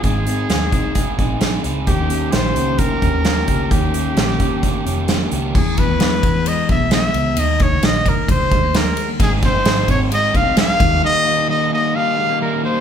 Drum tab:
CC |--------|--------|--------|x-------|
RD |--------|--------|--------|-xxxxxxx|
HH |xxxxxxxx|xxxxxxxx|xxxxxxxx|--------|
SD |--o---o-|--o---o-|--o---o-|--o---o-|
BD |o--ooo--|o---oo-o|o--oo---|oo-o-o--|

CC |--------|--------|--------|
RD |xxxxxxxx|xxxxxxxx|--------|
HH |--------|--------|--------|
SD |--o---o-|-oo---o-|--------|
BD |-o-ooo--|oo-o-o-o|--------|